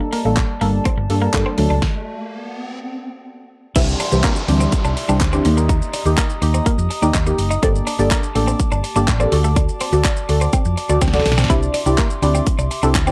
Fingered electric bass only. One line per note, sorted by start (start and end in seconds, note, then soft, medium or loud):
0.25 0.42 A1 medium
0.61 0.78 G1 medium
0.97 1.06 G1 loud
1.10 1.27 G2 medium
1.34 1.42 G2 loud
1.58 1.67 D2 loud
1.70 1.79 C#2 medium
3.76 3.93 C2 loud
4.12 4.21 C2 loud
4.49 4.66 D2 loud
4.85 4.93 C2 medium
5.09 5.21 C2 medium
5.21 5.38 D2 loud
5.45 5.79 D#2 loud
6.06 6.14 D#2 loud
6.42 6.59 D#2 medium
6.78 6.87 F2 loud
7.02 7.11 D#2 medium
7.14 7.32 D#2 loud
7.38 7.56 F#1 medium
7.63 7.80 G1 loud
7.99 8.08 G1 loud
8.35 8.52 A1 medium
8.72 8.80 G1 loud
8.96 9.04 G1 loud
9.08 9.25 A1 medium
9.32 9.66 D2 loud
9.93 10.01 D2 loud
10.29 10.46 D2 medium
10.65 10.74 F2 loud
10.89 10.98 D2 loud
11.02 11.19 D2 loud
11.26 11.43 B1 loud
11.50 11.67 C2 loud
11.86 11.95 C2 medium
12.22 12.40 D2 medium
12.59 12.67 C2 medium
12.83 12.95 C2 medium
12.95 13.12 D2 loud